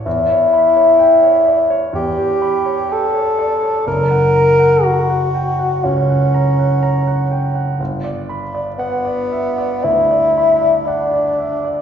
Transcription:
<<
  \new Staff \with { instrumentName = "Grand piano" } { \time 4/4 \key g \lydian \tempo 4 = 61 e,16 cis''16 b''16 cis''16 g''16 cis''16 d''16 cis''16 e,16 g'16 b''16 cis''16 g''16 cis''16 d''16 cis''16 | fis,,16 fis''16 ais''16 fis''16 ais''16 fis''16 g''16 fis''16 cis,16 fis''16 ais''16 fis''16 ais''16 fis''16 g''16 fis''16 | g,,16 d''16 b''16 d''16 fis''16 d''16 e''16 d''16 d,16 d''16 b''16 d''16 fis''16 d''16 e''16 d''16 | }
  \new Staff \with { instrumentName = "Bassoon" } { \time 4/4 \key g \lydian e'2 g'4 a'4 | ais'4 fis'4 cis'2 | r4 b4 e'4 d'4 | }
>>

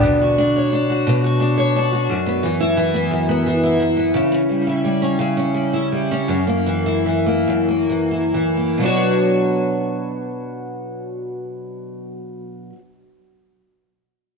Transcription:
\new Staff \with { instrumentName = "Steel-string acoustic guitar" } { \time 6/8 \key b \minor \tempo 4. = 53 b,16 fis'16 d'16 cis''16 d'16 fis'16 b,16 fis'16 d'16 cis''16 d'16 fis'16 | fis,16 b16 e16 e'16 e16 b16 fis,16 b16 e16 e'16 e16 b16 | cis16 cis'16 g16 e'16 g16 cis'16 cis16 cis'16 g16 e'16 g16 cis'16 | fis,16 ais16 e16 e'16 e16 ais16 fis,16 ais16 e16 e'16 e16 ais16 |
<b, fis b d' fis' cis''>2.~ | <b, fis b d' fis' cis''>2. | }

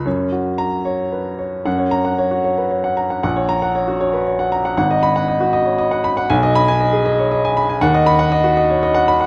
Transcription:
<<
  \new Staff \with { instrumentName = "Grand piano" } { \time 6/8 \key fis \major \tempo 4. = 78 << { r4 ais''4 r4 | r8 ais''8 r2 | r8 ais''8 r2 | r8 b''8 r2 |
r8 b''8 r2 | \key b \major r8 b''8 r2 | } \\ { cis''8 fis'8. r16 cis''8 b'8 cis''8 | fis''16 cis''8 fis''16 cis''16 fis'16 cis''16 b'16 cis''16 fis''16 ais''16 fis''16 | fis''16 cis''8 fis''16 cis''16 fis'16 cis''16 b'16 cis''16 fis''16 ais''16 fis''16 | fis''16 dis''8 fis''16 dis''16 fis'16 dis''16 cis''16 dis''16 fis''16 b''16 fis''16 |
gis''16 dis''8 gis''16 dis''16 gis'16 dis''16 cis''16 dis''16 gis''16 b''16 gis''16 | fis''16 dis''8 fis''16 dis''16 fis'16 dis''16 cis''16 dis''16 fis''16 b''16 fis''16 | } >> }
  \new Staff \with { instrumentName = "Grand piano" } { \clef bass \time 6/8 \key fis \major fis,2. | fis,2. | ais,,2. | gis,,2. |
b,,2. | \key b \major dis,2. | }
>>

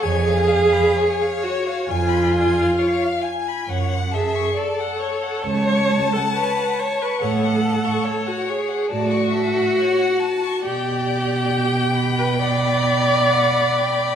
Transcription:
<<
  \new Staff \with { instrumentName = "Violin" } { \time 4/4 \key fis \minor \tempo 4 = 68 cis''16 eis''16 gis''16 b''16 gis''16 eis''16 cis''16 eis''16 gis''16 b''16 gis''16 eis''16 cis''16 eis''16 gis''16 b''16 | cis''16 fis''16 a''16 cis'''16 a''16 fis''16 cis''16 fis''16 a''16 cis'''16 a''16 fis''16 cis''16 fis''16 a''16 cis'''16 | cis''16 fis''16 a''16 cis'''16 a''16 fis''16 cis''16 fis''16 a''16 cis'''16 a''16 fis''16 cis''16 fis''16 a''16 cis'''16 | d''4 g''8 b''2~ b''8 | }
  \new Staff \with { instrumentName = "Violin" } { \time 4/4 \key fis \minor gis''8 eis''8 cis''4 gis''8 gis''8 eis''8 gis''8 | fis''8 e''8 d''8 cis''8 a''2 | fis''4 cis''4 d''8 e''8 fis''8 a''8 | g''2. fis''8 g''8 | }
  \new Staff \with { instrumentName = "Viola" } { \time 4/4 \key fis \minor gis'4. fis'8 eis'2 | r8 gis'8 a'4 cis''8. a'16 b'8 cis''16 b'16 | a'4~ a'16 fis'16 gis'8 fis'2 | g'4.~ g'16 b'16 d''2 | }
  \new Staff \with { instrumentName = "Cello" } { \clef bass \time 4/4 \key fis \minor eis,4 r4 eis,4 r4 | fis,4 r4 cis,4 r4 | a,4 r4 a,4 r4 | b,1 | }
>>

